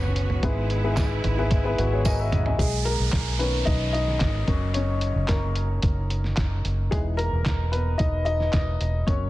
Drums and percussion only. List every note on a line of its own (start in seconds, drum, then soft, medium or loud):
0.03 floor tom medium
0.16 closed hi-hat medium
0.30 floor tom medium
0.43 kick loud
0.43 closed hi-hat medium
0.70 closed hi-hat medium
0.97 kick loud
0.97 snare loud
0.97 clap medium
0.97 closed hi-hat medium
0.97 tambourine medium
1.24 closed hi-hat medium
1.24 floor tom medium
1.51 kick loud
1.51 closed hi-hat medium
1.78 closed hi-hat medium
1.78 floor tom medium
2.05 kick medium
2.05 snare medium
2.05 closed hi-hat medium
2.05 tambourine medium
2.32 closed hi-hat medium
2.32 mid tom medium
2.46 floor tom medium
2.59 kick medium
2.59 closed hi-hat medium
2.86 closed hi-hat medium
3.13 kick medium
3.13 snare medium
3.13 clap medium
3.13 closed hi-hat medium
3.40 closed hi-hat medium
3.67 kick loud
3.67 closed hi-hat medium
3.94 closed hi-hat medium
4.08 snare soft
4.20 kick medium
4.20 snare medium
4.20 clap medium
4.20 closed hi-hat medium
4.48 kick medium
4.48 closed hi-hat medium
4.74 closed hi-hat medium
5.01 closed hi-hat medium
5.28 kick medium
5.28 snare medium
5.28 clap medium
5.28 closed hi-hat medium
5.56 closed hi-hat medium
5.82 kick loud
5.82 closed hi-hat medium
6.10 closed hi-hat medium
6.24 snare soft
6.37 kick medium
6.37 snare medium
6.37 clap medium
6.37 closed hi-hat medium
6.65 closed hi-hat medium
6.92 kick loud
6.92 closed hi-hat medium
7.19 closed hi-hat medium
7.46 kick loud
7.46 snare medium
7.46 clap medium
7.46 closed hi-hat medium
7.73 closed hi-hat medium
7.99 kick loud
7.99 closed hi-hat medium
8.26 closed hi-hat medium
8.40 snare soft
8.53 kick medium
8.53 snare medium
8.53 clap medium
8.53 closed hi-hat medium
8.81 closed hi-hat medium
9.08 kick loud
9.08 closed hi-hat medium